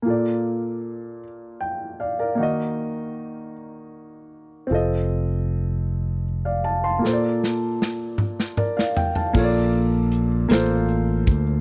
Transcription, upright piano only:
<<
  \new Staff \with { instrumentName = "Upright piano" } { \time 6/8 \key bes \major \tempo 4. = 52 << { r2 g''8 <d'' f''>16 <bes' d''>16~ | <bes' d''>16 r2 r8. | r2 r16 <d'' f''>16 <f'' a''>16 <a'' c'''>16~ | <a'' c'''>16 r4. r16 <bes' d''>16 <d'' f''>16 g''16 <f'' a''>16~ |
<f'' a''>16 r2 r8. | } \\ { <bes f' a' d''>2. | <bes ees' ges' ees''>2. | <c' f' a' ees''>2. | <bes f' a' c'' d''>2. |
<bes f' a' des'' d''>4 r8 <bes f' a' c''>4 r8 | } >> }
  \new Staff \with { instrumentName = "Upright piano" } { \clef bass \time 6/8 \key bes \major bes,4. r4. | ees4. r4. | r2. | bes,4. r4. |
bes,4. r4. | }
>>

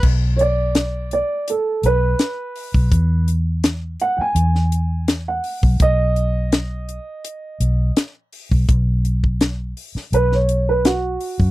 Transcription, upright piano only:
\new Staff \with { instrumentName = "Upright piano" } { \time 4/4 \key b \mixolydian \tempo 4 = 83 r8 <cis'' d''>4 d''8 a'8 b'4.~ | b'8 r4 fis''16 <g'' gis''>4. fis''8. | dis''2. r4 | r2 b'16 cis''8 b'16 fis'4 | }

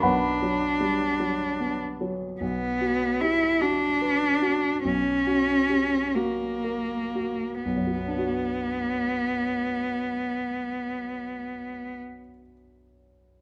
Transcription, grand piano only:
\new Staff \with { instrumentName = "Grand piano" } { \time 6/8 \key b \minor \tempo 4. = 43 << { <b' fis'' b''>2~ <b' fis'' b''>8 r8 | r2. | r2. | <b,, fis, fis b d' fis'>2.~ |
<b,, fis, fis b d' fis'>2. | } \\ { b,,8 fis8 g8 fis8 b8 fis8 | b,,8 fis'8 g'8 fis'8 b'8 fis'8 | b,,8 fis'8 g'8 fis'8 ais'8 fis'8 | r2. |
r2. | } >> }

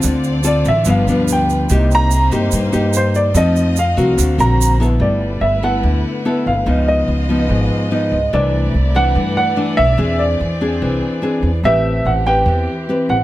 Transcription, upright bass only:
\new Staff \with { instrumentName = "Upright bass" } { \clef bass \time 4/4 \key d \phrygian \tempo 4 = 145 d,4. a,,8 g,,8 d,4. | c,4. g,8 g,8 g,4. | f,4. c,8 d,8 bes,,4. | \key g \major g,,4 g,,4 d,8 r4 g,,8 |
cis,4 cis,4 gis,,8 r4 cis,8 | c,4 c,4 g,8 r4 b,,8 | e,4 e,4 bis,,8 r4 e,8 | a,,4 a,,4 e,8 r4 a,,8 | }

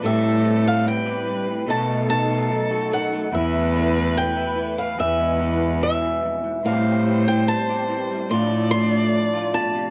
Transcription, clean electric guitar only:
\new Staff \with { instrumentName = "Clean electric guitar" } { \time 4/4 \key a \minor \tempo 4 = 73 << { <e g c' g'>16 g16 c'16 g16 c'16 g'8. <dis a dis' fis'>16 a16 dis'16 a16 dis'16 fis'16 dis'16 a16 | e'16 a16 b16 a16 b16 e'16 b16 a16 gis'16 gis16 b16 gis16 b16 gis'8. | <e g c' g'>16 g16 c'16 g16 c'16 g'16 c'16 g16 <f a d' f'>16 a16 d'16 a16 d'16 f'8. | } \\ { a,8 e8 e,8 g,16 a,16 b,8 dis8 fis,8 dis8 | e,8 e8 b,8 e8 e,8 e8 b,8 f,16 gis,16 | a,8 e8 e,8 e8 a,8 f8 a,8 b,16 c16 | } >> }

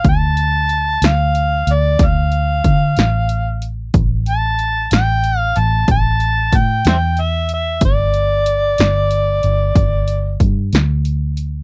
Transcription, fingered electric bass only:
\new Staff \with { instrumentName = "Fingered electric bass" } { \clef bass \time 12/8 \key d \minor \tempo 4. = 62 d,4. d,4 d,8 d,4 d8 a,,4. | a,,4. a,,4 a,,8 a,,4 a,8 e,4. | g,,4. g,,4 g,,8 g,,4 g,8 d,4. | }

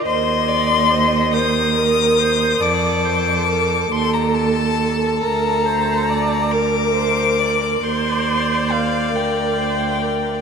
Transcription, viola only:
\new Staff \with { instrumentName = "Viola" } { \time 12/8 \key bes \major \tempo 4. = 46 ees''4. c''8 bes'8 c''8 d''8 c''8 bes'8 a'4. | bes'8 c''8 d''8 bes'4. c''4. bes'8 c''8 bes'8 | }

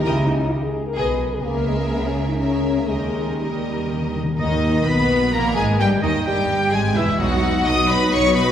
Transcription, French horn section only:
\new Staff \with { instrumentName = "French horn section" } { \time 3/4 \key gis \minor \tempo 4 = 128 e'8 dis'8 g'16 gis'8 ais'16 b'8. gis'16 | ais8 gis8 b16 cis'8 dis'16 cis'8. ais16 | gis4 g4. r8 | dis4 b4 ais8 gis8 |
g8 dis8 g4 gis8 e8 | <b dis'>2. | }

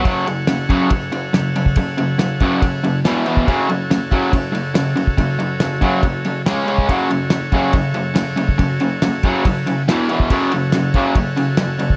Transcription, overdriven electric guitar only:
\new Staff \with { instrumentName = "Overdriven electric guitar" } { \clef bass \time 4/4 \key fis \minor \tempo 4 = 140 <fis, cis fis>8 <fis, cis>8 <fis, cis>8 <fis, cis fis>8 <fis, cis>8 <fis, cis>8 <fis, cis>8 <fis, cis>8 | <fis, cis>8 <fis, cis>8 <fis, cis>8 <fis, cis fis>8 <fis, cis>8 <fis, cis>8 <e, b, e>8 <e, b, e>8 | <fis, cis fis>8 <fis, cis>8 <fis, cis>8 <fis, cis fis>8 <fis, cis>8 <fis, cis>8 <fis, cis>8 <fis, cis>8 | <fis, cis>8 <fis, cis>8 <fis, cis>8 <fis, cis fis>8 <fis, cis>8 <fis, cis>8 <cis gis cis'>8 <cis gis cis'>8 |
<fis, cis fis>8 <fis, cis>8 <fis, cis>8 <fis, cis fis>8 <fis, cis>8 <fis, cis>8 <fis, cis>8 <fis, cis>8 | <fis, cis>8 <fis, cis>8 <fis, cis>8 <fis, cis fis>8 <fis, cis>8 <fis, cis>8 <e, b, e>8 <e, b, e>8 | <fis, cis fis>8 <fis, cis>8 <fis, cis>8 <fis, cis fis>8 <fis, cis>8 <fis, cis>8 <fis, cis>8 <fis, cis>8 | }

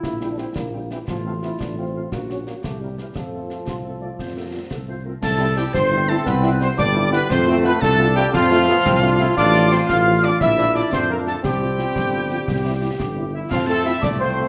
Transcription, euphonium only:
\new Staff \with { instrumentName = "Euphonium" } { \time 6/8 \key f \major \tempo 4. = 116 e'8. d'16 c'8 bes4 e8 | f8 a8 e'8 d'8 c'4 | bes8 des'8 bes8 a8 g8 e8 | f2.~ |
f2~ f8 r8 | \key c \major a4 g8 c'4 a8 | b4 c'8 d'4 b8 | c'4 b8 a4 g8 |
f2. | \key f \major d'4 c'8 f'4 d'8 | e'4 d'8 c'8 bes8 a8 | g2.~ |
g2~ g8 e8 | f8 a8 e'8 d'8 c'4 | }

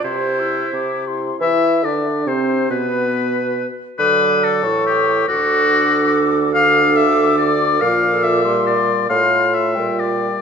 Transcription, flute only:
\new Staff \with { instrumentName = "Flute" } { \time 2/4 \key c \major \tempo 4 = 93 c'''8 e'''8 d'''8 c'''8 | \key d \mixolydian \tuplet 3/2 { e''4 d''8~ d''8 c''4 } | b'4. r8 | d'''4 cis'''4 |
d'''2 | \key d \minor d'''2 | d'''4 c'''4 | c'''4 g''4 | }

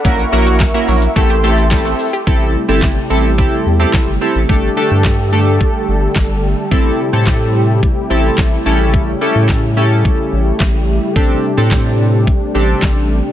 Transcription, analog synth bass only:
\new Staff \with { instrumentName = "Analog synth bass" } { \clef bass \time 4/4 \key a \dorian \tempo 4 = 108 ais,,8 ais,,4 ais,,8 a,,2 | a,,8. g,,8. a,,4 e,8 r16 g,,16 r16 a,,16 | g,,8 r16 g,4.~ g,16 g,,8 g,,4 | a,,8 r16 a,4.~ a,16 a,,8 a,,8 a,,8~ |
a,,8. a,4.~ a,16 a,,8 a,,4 | a,,8 r16 a,4.~ a,16 a,,8 a,,4 | }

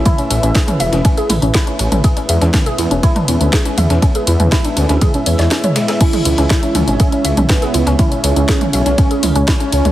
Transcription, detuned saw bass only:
\new Staff \with { instrumentName = "Detuned saw bass" } { \clef bass \time 4/4 \key cis \minor \tempo 4 = 121 r8 a,,16 a,,16 r8 e,,16 e,,16 r8 a,,16 a,,16 r8 a,,16 a,,16 | r8 e,16 e,16 r8 e,16 e,,16 r8 e,16 d,16 r8 e,16 e,16 | r8 e,16 e,16 r8 d,16 d,16 r8 e,16 e,16 r4 | r8 cis,16 cis,16 r8 cis,16 gis,,16 r8 cis,16 b,,16 r8 cis,16 cis,16 |
r8 cis,16 cis,16 r8 b,,16 b,,16 r8 cis,16 cis,16 r8 cis,16 cis,16 | }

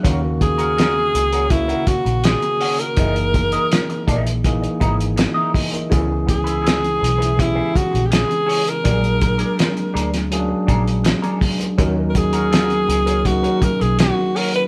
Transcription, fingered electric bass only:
\new Staff \with { instrumentName = "Fingered electric bass" } { \clef bass \time 4/4 \key dis \phrygian \tempo 4 = 82 dis,4. cis,4 r16 ais,,8 r8. | fis,,4 r8 ais,,4 gis,,8. r8. | cis,4. b,,4 r16 ais,,8 r8. | ais,,4 r8 d,4 ais,,8. r8. |
dis,4. cis,4 r16 b,,8 r8. | }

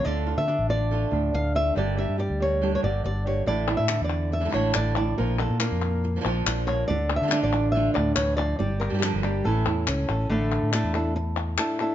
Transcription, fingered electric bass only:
\new Staff \with { instrumentName = "Fingered electric bass" } { \clef bass \time 4/4 \tempo 4 = 140 d,8. d8 a,,4~ a,,16 d,8 d,4 | g,,8. g,8 d,4~ d,16 g,,8 g,,4 | a,,8. a,8 e,4~ e,16 a,,8 a,,4 | bes,,8. bes,8 f,4~ f,16 bes,,8 bes,,4 |
d,8. d8 a,,4~ a,,16 d,8 d,4 | g,,8. g,8 g,,8. a,,8 e,8 cis,8 a,,8 | a,,8. a,8 e,2 r8. | }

